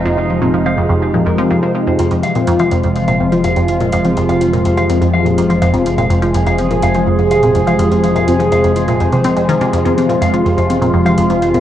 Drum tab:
HH |----------------|xxxxxxxxxx-xxxxx|xxxxxxxxxx-xxxxx|xxxxxxxxxx-xxxxx|
T1 |----------------|--o--o--o--o--o-|-o--o--o--o--o--|o--o--o--o--o--o|

HH |xxxxxxxxxxxxxxxx|xxxxxxxxxx-xxxxx|
T1 |--o--o--o--o--o-|--o--o--o--o--o-|